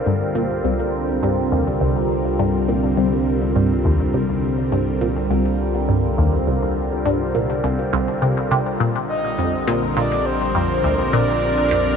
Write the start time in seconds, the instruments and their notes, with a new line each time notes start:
Already playing: analog synth bass C2, analog synth pad D3 G3 C4 F4 A#4
0.06 synth arpeggio sound G2
0.35 synth arpeggio sound A#2
0.64 synth arpeggio sound C2
1.23 synth arpeggio sound G2
1.52 synth arpeggio sound D#2
1.81 synth arpeggio sound C2
2.39 synth arpeggio sound G2
2.69 synth arpeggio sound A#2
2.97 synth arpeggio sound C2
3.56 synth arpeggio sound G2
3.85 synth arpeggio sound D#2
4.14 synth arpeggio sound C2
4.72 synth arpeggio sound G2
5.01 synth arpeggio sound A#2
5.30 synth arpeggio sound C2
5.89 synth arpeggio sound G2
6.18 synth arpeggio sound D#2
6.47 synth arpeggio sound C2
7.06 synth arpeggio sound G2
7.35 synth arpeggio sound A#2
7.64 synth arpeggio sound C2
7.93 synth arpeggio sound C2
8.22 synth arpeggio sound C3
8.51 synth arpeggio sound C3
8.80 synth arpeggio sound A#2, analog synth pad D3
9.08 soft synth lead D#5
9.21 analog synth pad G3
9.35 synth arpeggio sound F2, analog synth pad C4
9.58 analog synth pad A#4
9.67 synth arpeggio sound A#2
9.97 synth arpeggio sound A#2, soft synth lead D5
10.26 soft synth lead C5
10.55 synth arpeggio sound F2, analog synth pad F4
10.84 synth arpeggio sound D2
11.13 synth arpeggio sound A#2, soft synth lead D5
11.71 synth arpeggio sound F2